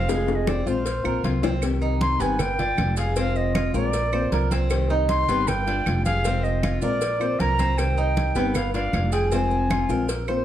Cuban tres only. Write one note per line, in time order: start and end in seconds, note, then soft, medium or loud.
0.09 0.46 G#3 medium
0.47 0.66 C4 medium
0.67 1.04 F4 medium
1.05 1.24 A#4 medium
1.24 1.43 F4 medium
1.43 1.62 C4 loud
1.82 2.19 D#4 medium
2.20 2.58 B3 medium
2.59 2.97 D4 medium
2.97 3.16 G#4 medium
3.16 3.54 C4 medium
3.55 3.74 F4 medium
3.74 4.12 A#4 medium
4.13 4.32 C5 medium
4.32 4.51 A#4 medium
4.51 4.89 C4 medium
4.90 5.27 D#4 medium
5.29 5.66 B3 medium
5.67 6.05 D4 medium
6.06 6.24 G#4 medium
6.25 6.62 C4 medium
6.63 6.82 F4 medium
6.82 7.20 A#4 medium
7.21 7.39 C5 medium
7.40 7.59 A#4 medium
7.59 7.96 C4 medium
7.98 8.35 D#4 medium
8.36 8.73 B3 medium
8.74 9.12 D4 medium
9.12 9.31 G#4 medium
9.32 9.69 C4 medium
9.71 9.89 F4 medium
9.90 10.27 A#4 medium
10.28 10.45 C5 medium